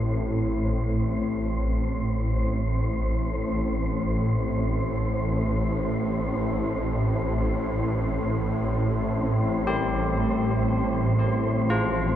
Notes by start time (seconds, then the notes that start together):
Already playing: A1 A2 C4 C5
8.14 C4 C5
9.67 G4
11.70 F4